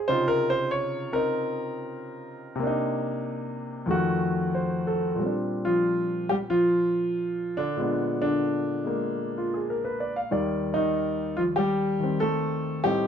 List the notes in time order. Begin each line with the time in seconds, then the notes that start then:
Already playing: G#4
0.08 C3 C#3 D#4 F4 C5
0.28 A#4
0.50 C5
0.71 C#5
1.13 C4 D#4 A#4
2.56 C3 A#3
2.63 D4 D#4
3.86 F2 D#3 A3
3.91 F#4
4.55 C5
4.87 A4
5.15 A#2 G3
5.22 C4 D4
5.65 F3 F4
6.29 G3 G4
6.50 F3 F4
7.57 D3 D4
7.77 A#2 G#3 B3
7.81 D4
8.22 D3 D4
8.84 G#3 A#3
9.38 F4
9.54 G#4
9.70 A#4
9.85 B4
10.00 D5
10.16 F5
10.31 D#2 D#3 G3 D5
10.74 D#3 D#4
11.37 F3 F4
11.56 G3 G4
12.00 D#3 C4
12.20 A3 A4
12.84 A2 G3 C4 D#4 G4